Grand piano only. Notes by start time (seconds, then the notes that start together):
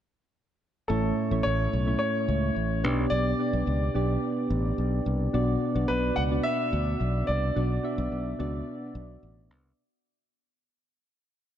0.88 A4
1.43 C#5
1.99 C#5
3.10 D5
5.88 B4
6.16 F#5
6.43 E5
7.27 D5